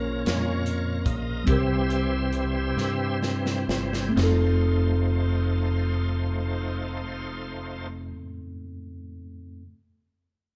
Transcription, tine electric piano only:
Already playing: A#2 A#3 C#4 F4 A#4 C#5
1.44 C3 G3 C4 E4
1.49 G4 A#4
1.58 C5
4.09 A3 C4
4.16 F2 D#4 F4
4.23 A4

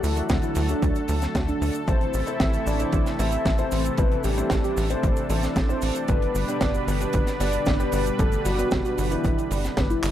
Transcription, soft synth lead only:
0.03 E4
0.43 E4
0.69 D4
1.48 D4
1.88 C5
2.27 E5
2.67 D5
3.19 E5
3.59 C5
3.98 B4
4.24 G4
4.64 G4
4.90 C5
5.69 C5
6.09 B4
6.48 D5
6.88 B4
7.40 D5
7.80 B4
8.19 A4
8.46 F#4
8.85 F#4
9.11 E4
9.90 E4

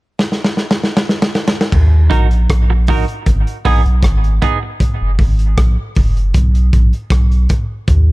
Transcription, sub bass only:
1.73 D#2
2.11 A#1
2.50 A#1
3.27 G#1
3.66 A#1
3.86 B1
4.03 G#1
5.02 F#1
5.20 G#1
5.58 A#1
5.97 F#1
6.35 B1
6.74 A#1
7.11 B1
7.88 D#2

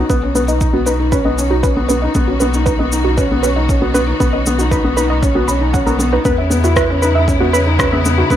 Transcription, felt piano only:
0.09 B3
0.23 C#4
0.35 B3
0.48 D#4
0.61 D#4
0.73 B3
0.86 D#4
1.00 D#4
1.12 C#4
1.25 B3
1.39 C#4
1.51 D#4
1.64 C#4
1.77 B3
1.90 B3
2.03 D#4
2.16 B3
2.29 C#4
2.42 B3
2.55 D#4
2.67 D#4
2.80 B3
2.93 D#4
3.06 D#4
3.18 C#4
3.32 B3
3.44 C#4
3.57 D#4
3.70 C#4
3.82 B3
3.95 B3
4.07 D#4
4.20 B3
4.33 C#4
4.47 B3
4.60 D#4
4.72 D#4
4.84 B3
4.97 D#4
5.10 D#4
5.22 C#4
5.35 B3
5.48 C#4
5.61 D#4
5.74 C#4
5.87 B3
5.99 B3
6.12 D#4
6.25 B3
6.38 C#4
6.50 B3
6.64 E4
6.77 E4
6.90 C#4
7.03 D#4
7.15 D#4
7.28 C#4
7.41 B3
7.54 C#4
7.67 D#4
7.80 C#4
7.93 B3
8.06 B3
8.19 D#4
8.32 B3

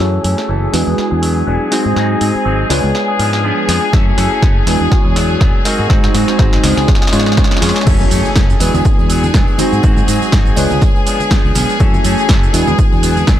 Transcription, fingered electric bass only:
0.00 F#2
0.24 F#2
0.49 F#1
0.74 E2
0.87 E2
0.98 muted fingered electric bass stroke
1.12 E2
1.47 E1
1.86 G#2
1.96 G#2
2.21 G#2
2.35 muted fingered electric bass stroke
2.46 G#1
2.70 C#2
2.84 C#2
3.19 G#2
3.69 F2
3.93 F#2
4.18 F#2
4.42 F#1
4.67 E2
4.81 E2
5.05 E2
5.41 E1
5.79 G#2
5.90 G#2
6.14 G#2
6.28 muted fingered electric bass stroke
6.39 G#1
6.64 C#2
6.77 C#2
7.13 G#2
7.62 F2
7.87 F#2
8.11 F#2
8.36 F#1
8.60 E2
8.74 E2
8.99 E2
9.34 E1
9.73 G#2
9.84 G#2
10.08 G#2
10.22 muted fingered electric bass stroke
10.33 G#1
10.57 C#2
10.71 C#2
11.45 C#2
11.56 B1
11.80 F#2
12.05 F#2
12.29 F#1
12.54 E2
12.68 E2
12.93 E2
13.28 E1

